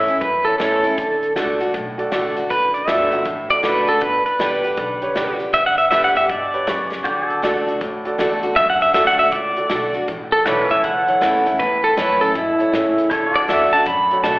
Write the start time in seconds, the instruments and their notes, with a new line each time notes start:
Already playing: upright bass G2, steel-string acoustic guitar A2, grand piano E4 A4 C#5, pedal steel guitar E5
0.08 steel-string acoustic guitar C#4 E4, closed hi-hat
0.21 steel-string acoustic guitar E2, upright bass F#2, pedal steel guitar B4, kick, closed hi-hat
0.45 grand piano E4 A4 C#5, pedal steel guitar A4, closed hi-hat
0.58 upright bass E2, steel-string acoustic guitar E3 A3 C#4 E4, grand piano E4 A4 C#5, pedal steel guitar A4, snare, closed hi-hat
0.84 steel-string acoustic guitar C#4 E4, closed hi-hat
0.98 upright bass D2, steel-string acoustic guitar D3, kick, closed hi-hat
1.23 closed hi-hat
1.36 upright bass C#2, steel-string acoustic guitar D3 A3 D4 F#4, grand piano F#4 A4 D5, snare, closed hi-hat
1.60 steel-string acoustic guitar D4 F#4, closed hi-hat
1.74 upright bass B1, steel-string acoustic guitar A2, kick, closed hi-hat
1.98 grand piano F#4 A4 D5, closed hi-hat
2.11 upright bass A1, steel-string acoustic guitar D3 A3 D4 F#4, grand piano F#4 A4 D5, snare, closed hi-hat
2.37 steel-string acoustic guitar D4 F#4, closed hi-hat
2.50 upright bass F#1, steel-string acoustic guitar D3, pedal steel guitar B4, kick, closed hi-hat
2.74 pedal steel guitar D5, closed hi-hat
2.87 upright bass G1, steel-string acoustic guitar D3 A3 D4 F#4, grand piano F#4 A4 D5, pedal steel guitar E5, snare, closed hi-hat
3.12 steel-string acoustic guitar D4 F#4, closed hi-hat
3.25 upright bass A1, steel-string acoustic guitar A2, kick, closed hi-hat
3.49 grand piano F#4 A4 D5, pedal steel guitar D5, closed hi-hat
3.63 upright bass F#1, steel-string acoustic guitar D3 A3 D4 F#4, grand piano F#4 A4 D5, pedal steel guitar B4, snare, closed hi-hat
3.87 steel-string acoustic guitar D4 F#4, pedal steel guitar A4, muted upright bass stroke, closed hi-hat
4.01 upright bass G1, steel-string acoustic guitar G2, pedal steel guitar B4, kick, closed hi-hat
4.25 pedal steel guitar B4, muted upright bass stroke, closed hi-hat
4.39 upright bass A1, steel-string acoustic guitar D3 G3 B3 G4, grand piano G4 B4 D5, snare, closed hi-hat
4.64 steel-string acoustic guitar B3 G4, closed hi-hat
4.77 upright bass B1, steel-string acoustic guitar D3, kick, closed hi-hat
5.01 grand piano G4 B4 C#5, closed hi-hat
5.15 upright bass C#2, steel-string acoustic guitar D3 G3 B3 G4, grand piano G4 B4 D5, snare, closed hi-hat
5.39 steel-string acoustic guitar B3 G4, closed hi-hat
5.54 upright bass D2, steel-string acoustic guitar G2, pedal steel guitar E5, kick, closed hi-hat
5.66 pedal steel guitar F#5
5.78 pedal steel guitar E5, closed hi-hat
5.91 upright bass A2, steel-string acoustic guitar D3 G3 B3 G4, grand piano G4 B4 E5, pedal steel guitar E5, snare, closed hi-hat
6.04 pedal steel guitar F#5
6.15 steel-string acoustic guitar B3 G4, pedal steel guitar E5, closed hi-hat
6.29 upright bass G2, steel-string acoustic guitar B2, pedal steel guitar D5, kick, closed hi-hat
6.53 grand piano G4 B4 C#5, closed hi-hat
6.66 upright bass F#2, steel-string acoustic guitar C#3, grand piano G4 B4 C#6, snare, closed hi-hat
6.92 snare
7.04 upright bass D2, steel-string acoustic guitar D3, pedal steel guitar F#4 G4 D5, kick, closed hi-hat
7.30 pedal steel guitar A4, closed hi-hat
7.42 upright bass C#2, steel-string acoustic guitar D3 A3 D4 F#4, grand piano F#4 A4 D5, snare, closed hi-hat
7.66 steel-string acoustic guitar D4 F#4, closed hi-hat
7.81 upright bass D2, steel-string acoustic guitar A2, kick, closed hi-hat
8.05 grand piano F#4 A4 D5, closed hi-hat
8.18 upright bass E2, steel-string acoustic guitar D3 A3 D4 F#4, grand piano F#4 A4 D5, snare, closed hi-hat
8.43 steel-string acoustic guitar D4 F#4, closed hi-hat
8.56 upright bass F#2, steel-string acoustic guitar D3, pedal steel guitar E5, kick, closed hi-hat
8.70 pedal steel guitar F#5
8.81 pedal steel guitar E5, closed hi-hat
8.93 upright bass D2, steel-string acoustic guitar D3 A3 D4 F#4, grand piano F#4 A4 D5, pedal steel guitar E5, snare, closed hi-hat
9.07 pedal steel guitar F#5
9.18 steel-string acoustic guitar D4 F#4, pedal steel guitar E5, closed hi-hat
9.32 upright bass C#2, steel-string acoustic guitar A2, pedal steel guitar D5, kick, closed hi-hat
9.57 grand piano F#4 A4 D5, closed hi-hat
9.69 upright bass B1, steel-string acoustic guitar D3 A3 D4 F#4, grand piano F#4 A4 D5, snare, closed hi-hat
9.94 steel-string acoustic guitar D4 F#4, closed hi-hat
10.08 upright bass A1, steel-string acoustic guitar A2, kick, closed hi-hat
10.32 pedal steel guitar A4, closed hi-hat
10.45 upright bass B1, steel-string acoustic guitar E3 A3 C#4 E4, grand piano E4 A4 C#5, pedal steel guitar F#4 A4 B4 D5, snare, closed hi-hat
10.68 pedal steel guitar E4 C#5 E5, closed hi-hat
10.84 upright bass C#2, steel-string acoustic guitar E2, pedal steel guitar F#5, kick, closed hi-hat
11.07 grand piano E4 A4 C#5, muted upright bass stroke, closed hi-hat
11.21 upright bass D#2, steel-string acoustic guitar E3 A3 C#4 E4, grand piano E4 A4 C#5, snare, closed hi-hat
11.46 steel-string acoustic guitar C#4 E4, closed hi-hat
11.59 upright bass E2, steel-string acoustic guitar A2, pedal steel guitar B4, kick, closed hi-hat
11.84 pedal steel guitar A4, closed hi-hat
11.97 upright bass F#2, steel-string acoustic guitar E3 A3 C#4 E4, grand piano E4 A4 C#5, pedal steel guitar B4, snare, closed hi-hat
12.21 steel-string acoustic guitar C#4 E4, pedal steel guitar A4, closed hi-hat
12.35 upright bass G2, steel-string acoustic guitar B2, pedal steel guitar E4, kick, closed hi-hat
12.59 grand piano E4 A4 C#5, muted upright bass stroke, closed hi-hat
12.72 upright bass A2, steel-string acoustic guitar C#3, grand piano E4 A4 C#5, snare, closed hi-hat
12.98 closed hi-hat
13.10 upright bass D2, steel-string acoustic guitar D3, pedal steel guitar E4 A4 C#5, kick, closed hi-hat
13.33 pedal steel guitar F#4 D5, closed hi-hat
13.48 upright bass E2, steel-string acoustic guitar D3 A3 D4 F#4, grand piano F#4 A4 D5, pedal steel guitar E5, snare, closed hi-hat
13.72 steel-string acoustic guitar D4 F#4, pedal steel guitar A5, muted upright bass stroke, closed hi-hat
13.86 upright bass F#2, steel-string acoustic guitar A2, pedal steel guitar B5, kick, closed hi-hat
14.11 grand piano F#4 A4 C#5, closed hi-hat
14.23 upright bass B1, steel-string acoustic guitar D3 A3 D4 F#4, grand piano F#4 A4 D5, pedal steel guitar A5, snare, closed hi-hat